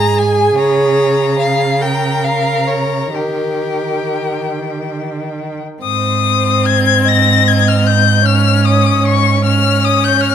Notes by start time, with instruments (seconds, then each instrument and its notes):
Already playing: cello G#2, viola G#4, violin G#5 A#5
0.18 violin G#5
0.58 cello C#3, violin C#5 A#5
1.39 violin F5
1.81 viola A#4, violin G5 A#5
2.24 violin F5
2.67 violin C#5
3.14 cello D#3, viola G4, violin A#4 G5
5.83 cello G#2, viola C4, violin C5 D#6
6.66 violin G#6
7.05 violin D#5 A#6
7.48 violin G#6
7.68 violin F6
7.87 violin G6
8.24 viola C#4, violin C#5 F6
8.66 violin D#6
9.05 violin C#6
9.44 viola C#4, violin C#5 F6
9.85 violin D#6
10.05 violin G6
10.21 violin F6